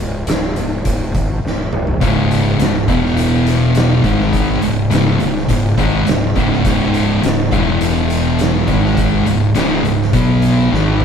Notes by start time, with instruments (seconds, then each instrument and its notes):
0.00 fingered electric bass C#1
0.27 fingered electric bass C#1, snare, closed hi-hat
0.56 fingered electric bass C#1, closed hi-hat
0.85 fingered electric bass C#1, kick, closed hi-hat
1.15 fingered electric bass G#1, kick, closed hi-hat
1.44 fingered electric bass C#1, snare
1.73 fingered electric bass C#1, mid tom
1.87 floor tom
2.01 fingered electric bass C#1, distorted electric guitar C#2 G#2 C#3, kick, closed hi-hat
2.31 closed hi-hat
2.59 fingered electric bass C#1, distorted electric guitar C#2 G#2, snare, closed hi-hat
2.88 fingered electric bass E1, distorted electric guitar E2 B2 E3, kick, closed hi-hat
3.06 snare
3.17 closed hi-hat
3.47 snare, closed hi-hat
3.75 snare, closed hi-hat
4.04 fingered electric bass G#1, distorted electric guitar G#2 D#3 G#3, kick, closed hi-hat
4.21 snare
4.33 kick, closed hi-hat
4.62 fingered electric bass C#1, distorted electric guitar C#2 G#2, closed hi-hat
4.90 fingered electric bass C#1, distorted electric guitar C#2 G#2 C#3, snare, closed hi-hat
5.20 fingered electric bass C#1, distorted electric guitar C#2 G#2, closed hi-hat
5.37 snare
5.49 fingered electric bass C#1, distorted electric guitar C#2 G#2, kick, closed hi-hat
5.78 fingered electric bass G#1, distorted electric guitar G#2 D#3 G#3, kick, closed hi-hat
6.06 fingered electric bass C#1, distorted electric guitar C#2 G#2, snare, closed hi-hat
6.36 fingered electric bass C#1, distorted electric guitar C#2 G#2 C#3, kick, closed hi-hat
6.53 snare
6.65 fingered electric bass C#1, distorted electric guitar C#2 G#2 C#3, kick, closed hi-hat
6.94 closed hi-hat
7.23 fingered electric bass C#1, distorted electric guitar C#2 G#2, snare, closed hi-hat
7.51 fingered electric bass E1, distorted electric guitar E2 B2 E3, kick, closed hi-hat
7.81 closed hi-hat
8.10 closed hi-hat
8.39 snare, closed hi-hat
8.68 fingered electric bass G#1, distorted electric guitar G#2 D#3 G#3, kick, closed hi-hat
8.85 snare
8.97 kick, closed hi-hat
9.26 fingered electric bass C#1, distorted electric guitar C#2 G#2, closed hi-hat
9.55 fingered electric bass C#1, distorted electric guitar C#2 G#2 C#3, snare, closed hi-hat
9.84 fingered electric bass C#1, distorted electric guitar C#2 G#2, closed hi-hat
10.02 snare
10.13 fingered electric bass B1, distorted electric guitar B2 F#3 B3, kick, closed hi-hat
10.42 snare, closed hi-hat
10.72 fingered electric bass G#1, distorted electric guitar G#2 D#3 G#3, snare
11.00 mid tom